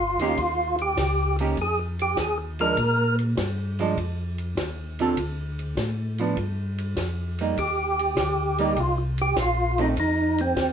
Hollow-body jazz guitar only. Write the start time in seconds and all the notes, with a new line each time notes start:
0.21 D#3 A#3 C#4 G4
1.40 D#3 A#3 C#4 G4
2.60 F3 G#3 D4
3.80 F3 G#3 D4
5.00 D3 C4 F4 A4
6.20 F3 B3 D4
7.41 G3 A#3 D#4
8.59 G3 A#3 D#4
9.78 D#3 A3 C4